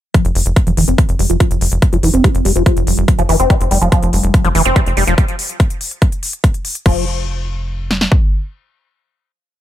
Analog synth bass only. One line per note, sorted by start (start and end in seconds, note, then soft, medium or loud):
0.25 0.32 F1 medium
0.35 0.43 F1 loud
0.46 0.53 F1 medium
0.67 0.74 F1 medium
0.77 0.85 F1 loud
0.88 0.95 F1 medium
1.09 1.16 F1 medium
1.19 1.27 F1 loud
1.30 1.37 F1 medium
1.51 1.58 F1 medium
1.61 1.69 F1 loud
1.72 1.79 F1 medium
1.93 2.00 F1 medium
2.03 2.11 F1 loud
2.14 2.21 F1 medium
2.35 2.42 F1 medium
2.45 2.53 F1 loud
2.56 2.63 F1 loud
2.77 2.84 F1 medium
2.87 2.95 F1 medium
2.98 3.05 F1 medium
3.19 3.26 F1 medium
3.29 3.37 F1 loud
3.40 3.47 F1 medium
3.61 3.68 F1 medium
3.71 3.79 F1 loud
3.82 3.89 F1 medium
4.03 4.10 F1 medium
4.13 4.21 F1 loud
4.24 4.31 F1 medium
4.44 4.52 F1 medium
4.55 4.62 F1 loud
4.65 4.73 F1 medium
4.86 4.94 F1 medium
4.97 5.04 F1 loud
5.07 5.15 F1 medium
6.86 8.08 F1 medium